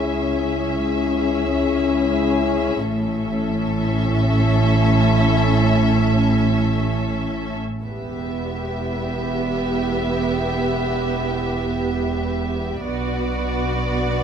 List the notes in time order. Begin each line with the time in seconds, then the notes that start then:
Already playing: C#2 C#4 E4 G#4 E5
2.82 A1 A2 C#4 E4 A4 E5
7.82 E1 E2 B3 G4 E5
12.82 B1 B2 B3 D4 F#4 D5